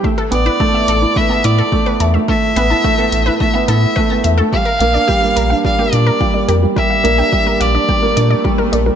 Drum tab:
HH |-x-x-x-x|-x-x-x-x|-x-x-x-x|-x-x-x-x|
BD |o-o-o-o-|o-o-o-o-|o-o-o-o-|o-o-o-o-|